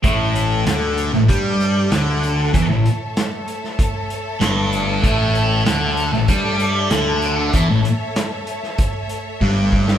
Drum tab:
HH |x-x-x-x-x-x-x-x-|x-x-x-x-x-x-x-x-|x-x-x-x-x-x-x-x-|x-x-x-x-x-x-----|
SD |----o--o----o---|----o--o----o---|----o--o----o---|----o--o-------o|
BD |o-------o-------|o-------o-------|o-------o-------|o-------o---o-o-|